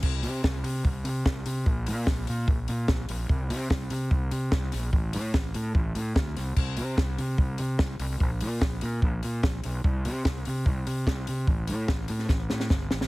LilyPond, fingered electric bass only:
\new Staff \with { instrumentName = "Fingered electric bass" } { \clef bass \time 4/4 \key c \dorian \tempo 4 = 147 c,8 c8 c,8 c8 c,8 c8 c,8 c8 | bes,,8 bes,8 bes,,8 bes,8 bes,,8 bes,8 bes,,8 bes,,8 | c,8 c8 c,8 c8 c,8 c8 c,8 bes,,8 | a,,8 a,8 a,,8 a,8 a,,8 a,8 d,8 c,8 |
c,8 c8 c,8 c8 c,8 c8 c,8 c,8 | bes,,8 bes,8 bes,,8 bes,8 bes,,8 bes,8 bes,,8 b,,8 | c,8 c8 c,8 c8 c,8 c8 c,8 c8 | a,,8 a,8 a,,8 a,8 a,,8 a,8 g,,8 a,,8 | }